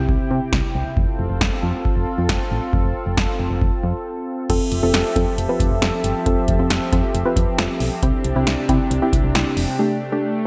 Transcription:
Already playing: C3 C4 E4 G4 G5
0.09 C2, kick
0.31 C3
0.53 C2, kick, snare
0.75 C2
0.97 F1 C4 F4 A4, kick
1.19 F1
1.30 F1
1.41 F1, kick, snare
1.63 F2
1.85 kick
1.96 F1
2.18 F2
2.29 F1, kick, snare
2.51 A1
2.73 F1, kick
2.84 F1
3.06 F1
3.17 F1, kick, snare
3.39 F1
3.50 F1
3.62 F1, kick
3.84 F2
4.50 F1 F3 C4 F4 G4 A4 E5, kick, closed hi-hat, crash
4.72 F1, closed hi-hat
4.83 F1 C4 F4 A4
4.94 F1, snare, closed hi-hat
5.16 F2 C4 F4 A4, kick, closed hi-hat
5.38 F1, closed hi-hat
5.49 C4 F4 B4
5.60 F1, kick, closed hi-hat
5.71 F1
5.82 F1 C4 F4 A4, snare, closed hi-hat
6.04 G1, closed hi-hat
6.26 F1 C4 F4 A4, kick, closed hi-hat
6.48 F1, kick, closed hi-hat
6.59 F1 C4 F4 A4
6.70 F1, snare, closed hi-hat
6.92 F2 C4 F4 A4, kick, closed hi-hat
7.14 F1, closed hi-hat
7.25 C4 F4 B4
7.36 F2, kick, closed hi-hat
7.58 F1 C4 F4 A4, snare, closed hi-hat
7.80 B1, open hi-hat
8.03 C2 C3 C4 D4 E4 G4, kick, closed hi-hat
8.24 C2, closed hi-hat
8.36 C2 C4 E4 G4
8.47 C2, snare, closed hi-hat
8.69 C3 C4 E4 G4, kick, closed hi-hat
8.91 C2, closed hi-hat
9.02 C4 E4 G4
9.13 C2, kick, closed hi-hat
9.24 C2
9.35 C2 C4 E4 G4, snare, closed hi-hat
9.57 F1, open hi-hat
9.79 A3 D4 G4
10.12 A3 D4 G4

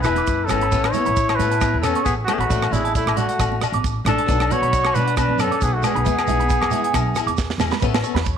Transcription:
0.01 E4 G#4 B4, cross-stick, closed hi-hat, low agogo, shekere
0.06 E1 B3 E4 E5
0.16 D6, closed hi-hat, high conga, shekere
0.27 F#1, kick, closed hi-hat, shekere
0.45 C#4 A4, low conga, shekere
0.49 G#1 B3 E4 G#4, cross-stick, closed hi-hat, low agogo
0.61 B5, closed hi-hat
0.72 A1 E3 B3 C#4 A4 C#5, kick, closed hi-hat, shekere
0.84 cross-stick, low agogo
0.91 E4 A4 C#5, closed hi-hat, high conga, low conga, shekere
0.97 B3 C#4
1.06 A1 B5, closed hi-hat, high conga, shekere
1.16 C#5, kick, closed hi-hat, shekere
1.28 C#6, cross-stick, low agogo
1.36 A2 E4 B4 C#5, closed hi-hat, low conga
1.40 C#4 A4, shekere
1.44 B3
1.51 A5, closed hi-hat, shekere
1.61 C#5, kick, cross-stick, closed hi-hat, high conga, low agogo, shekere
1.74 E2, high conga
1.80 C#4 A4 C#5, cross-stick, closed hi-hat, low agogo, shekere
1.87 B3 C#4
1.95 C#6, closed hi-hat, high conga
2.04 A1 B3 G#4, kick, closed hi-hat, shekere
2.25 F#4, cross-stick, closed hi-hat, low conga
2.29 A3 B3 C#4 A4, low agogo
2.34 G#4
2.38 A1 B3 F#4 B5, closed hi-hat
2.45 A3
2.50 A1 F#3 A3 D4 D5, kick, closed hi-hat, shekere
2.62 cross-stick, low agogo
2.71 A1 G#3 A3 D4 E4 D5, closed hi-hat, high conga, low conga, shekere
2.84 A5, closed hi-hat, high conga, shekere
2.95 A3 E4 D5, kick, closed hi-hat, shekere
3.06 A1 D6, cross-stick, low agogo
3.16 A3 D4 F#4 D5, closed hi-hat, low conga, shekere
3.29 F#5, closed hi-hat, shekere
3.39 A1 D5, kick, cross-stick, closed hi-hat, high conga, low agogo, shekere
3.52 high conga
3.60 A3 D4 D5, cross-stick, closed hi-hat, low agogo, shekere
3.72 A1 D6, closed hi-hat, high conga
3.84 kick, closed hi-hat, shekere
4.04 A1 A3 D4 A4, cross-stick, closed hi-hat, low conga, low agogo, shekere
4.08 D4
4.18 A5, closed hi-hat
4.26 B1 F#3 B3 D4 D5, kick, closed hi-hat, shekere
4.40 cross-stick, low agogo
4.50 B3 D4 F#4 C#5 D5, closed hi-hat, high conga, low conga, shekere
4.62 B1 B5, closed hi-hat, high conga
4.73 D5, kick, closed hi-hat, shekere
4.84 D6, cross-stick, low agogo
4.94 B2 B3 D4 B4 D5, closed hi-hat, low conga, shekere
5.07 F#5, closed hi-hat, shekere
5.17 D4 B4 D5, kick, cross-stick, closed hi-hat, high conga, low agogo, shekere
5.28 F#2, high conga
5.39 B3 C#4 D4 A4 D5, cross-stick, closed hi-hat, low agogo, shekere
5.51 D6, closed hi-hat, high conga
5.61 B1 B3 G#4, kick, closed hi-hat, shekere
5.74 A3 F#4
5.83 B3 D4 G#4, cross-stick, closed hi-hat, low conga, low agogo, shekere
5.95 B1 B5, closed hi-hat
6.05 E2 B3 G#4 E5, muted steel-string acoustic guitar stroke, kick, closed hi-hat, low conga, shekere
6.19 cross-stick, low agogo
6.27 B1 E4 G#4 E5, closed hi-hat, high conga, low conga, shekere
6.39 B5, closed hi-hat, high conga, shekere
6.49 G#5, kick, closed hi-hat, shekere
6.61 E2 D6, cross-stick, low agogo
6.71 E4 G#4 E5, closed hi-hat, low conga, shekere
6.83 G#5, closed hi-hat, shekere
6.93 B1 E5, kick, cross-stick, closed hi-hat, high conga, low agogo, shekere
7.06 high conga
7.15 G#4, cross-stick, closed hi-hat, low agogo, shekere
7.20 E4
7.26 E2 D6, closed hi-hat, high conga, shekere
7.37 kick, snare, shekere
7.50 snare, high conga
7.58 E2 G#4, snare, low conga, low agogo, shekere
7.62 E4
7.72 B5, snare, low conga
7.81 A1 E3 B3 C#4 A4 C#5, kick, shekere
7.94 snare, low agogo
8.03 B3 C#4 A4 C#5, shekere
8.14 E2 B5, snare
8.25 C#5, kick, shekere

